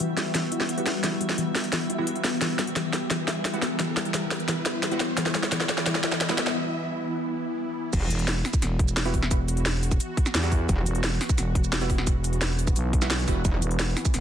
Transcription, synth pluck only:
0.00 0.10 E3 medium
0.34 0.45 E3 medium
0.52 0.58 E4 medium
0.86 1.01 B3 medium
1.03 1.14 E3 medium
1.21 1.36 G3 medium
1.38 1.48 E3 loud
1.72 1.82 E3 medium
1.90 1.96 E4 medium
2.24 2.39 B3 medium
2.41 2.51 E3 medium
2.59 2.74 G3 medium
2.76 2.86 E3 loud
3.10 3.20 E3 medium
3.28 3.34 E4 medium
3.62 3.77 B3 medium
3.79 3.89 E3 medium
3.97 4.12 G3 medium
4.14 4.24 E3 medium
4.48 4.58 E3 medium
4.66 4.72 E4 medium
5.00 5.15 B3 medium
5.17 5.27 E3 medium
5.35 5.50 G3 medium
5.52 5.62 E3 loud
5.86 5.96 E3 medium
6.03 6.10 E4 medium
6.38 6.53 B3 medium

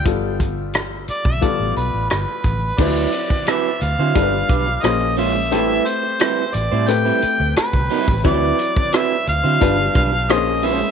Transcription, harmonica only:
1.10 1.28 D5 medium
1.27 1.45 E5 medium
1.44 1.76 D5 medium
1.77 2.09 B4 medium
2.10 2.81 B4 medium
2.79 3.48 D5 medium
3.48 3.83 E5 medium
3.82 4.85 F5 medium
4.84 5.18 D#5 medium
5.18 5.88 E5 medium
5.87 6.56 C5 medium
6.55 6.90 D5 medium
6.89 7.56 G5 loud
7.57 8.21 B4 medium
8.27 8.96 D5 loud
8.94 9.28 E5 loud
9.29 10.33 F5 loud
10.31 10.67 D#5 loud
10.66 10.91 E5 medium

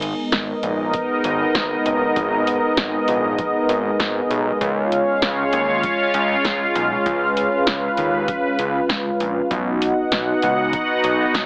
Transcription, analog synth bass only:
0.00 0.14 G#1 loud
0.33 0.54 G#1 loud
0.63 0.95 A#1 medium
1.24 1.46 G#1 loud
1.55 1.76 G#1 loud
1.85 2.07 F#1 medium
2.16 2.59 G#1 loud
2.78 2.99 G#1 medium
3.08 3.40 A#1 medium
3.69 3.91 G#1 loud
4.00 4.21 G#1 loud
4.30 4.52 B1 medium
4.61 5.04 C#2 medium
5.23 5.44 C#2 loud
5.53 5.85 D#2 medium
6.14 6.36 C#2 loud
6.45 6.66 C#2 medium
6.75 6.97 B1 medium
7.06 7.49 C#2 loud
7.67 7.89 C#2 loud
7.98 8.30 D#2 medium
8.59 8.80 C#2 loud
8.89 9.11 C#2 loud
9.20 9.42 A#1 medium
9.51 9.94 B1 loud
10.12 10.34 B1 loud
10.43 10.75 C#2 medium
11.04 11.25 B1 medium
11.34 11.46 B1 loud

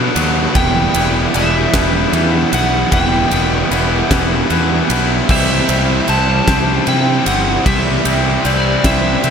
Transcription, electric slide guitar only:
0.00 0.12 F#5 medium
0.56 1.37 G5 loud
1.36 2.57 E5 loud
2.54 2.93 F#5 medium
2.94 4.86 G5 loud
5.31 6.11 E5 loud
6.09 6.90 A5 loud
6.88 7.27 G5 loud
7.27 7.63 F#5 loud
7.67 8.46 E5 loud
8.46 8.86 D5 medium
8.85 9.30 E5 loud

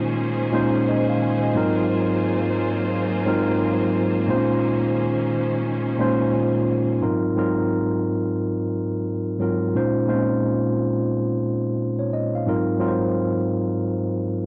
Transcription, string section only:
0.00 1.54 D#3 medium
0.00 1.52 A#3 medium
0.00 1.54 C#4 medium
0.00 6.98 G#4 medium
0.00 6.98 C5 medium
1.56 4.26 F#3 medium
1.56 6.97 A#3 medium
1.56 4.26 F4 medium
4.29 6.99 D#3 medium
4.29 6.99 C#4 medium

